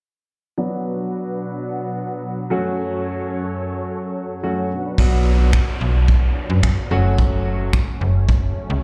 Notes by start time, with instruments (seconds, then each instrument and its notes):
0.58 supersaw synth B2 F#3 D4, grand piano F#3 B3 D4 F#4
2.50 supersaw synth F#2 C#4 A4 C#5, grand piano F#3 A3 C#4 F#4
4.43 grand piano F#3 A3 C#4 F#4
4.71 supersaw synth B2 F#3 D4 B4 F#5
4.98 fm bass B1, grand piano F#3 B3 D4 F#4, kick, crash, downlifter
5.53 finger snap, kick
5.81 fm bass B1
6.08 kick
6.50 fm bass F#2
6.63 fm bass F#2, finger snap, kick
6.91 fm bass F#1, grand piano F#3 A3 C#4 F#4, supersaw synth A3 C#4
7.18 kick
7.73 finger snap, kick
8.01 fm bass F#1
8.29 kick
8.70 fm bass C#2